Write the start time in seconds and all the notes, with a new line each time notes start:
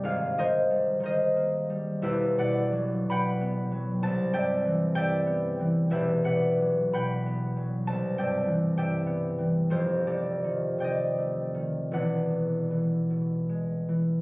Already playing: G3 A#3 D#4 G4 A#4 C5 D#5 G5
0.03 G#1 G#2 F5
0.38 D#3 A#4 C5 D#5
0.70 G3
1.00 D#3 A#4 C5
1.06 D#5
1.36 A#3
1.70 G3
2.02 E1 E2 G4 B4 E5
2.38 B2 B4 D5 F#5
2.72 F#3
3.09 B2 F#5 G5 B5
3.41 B3
3.72 F#3
4.03 C2 A5
4.33 G2 D5 E5 G5
4.65 E3
4.95 G2 D5 E5 G5
5.26 B3
5.59 E3
5.90 E1 E2 G4 B4 E5
6.24 B2 B4 D5 F#5
6.60 F#3
6.93 B2 F#5 G5 B5
7.26 B3
7.57 F#3
7.87 C2 A5
8.18 G2 D5 E5 G5
8.47 E3
8.77 G2 D5 E5 G5
9.06 B3
9.38 E3
9.70 F1 F2 G4 A4 C5
10.06 C3 G4 A4 D5
10.44 D#3
10.78 C3 D5 G5
10.84 D#5
11.18 A3
11.54 D#3
11.91 E1 E2 B4 D5 F#5
12.30 B2
12.70 E3
13.10 B2
13.49 G#3
13.89 E3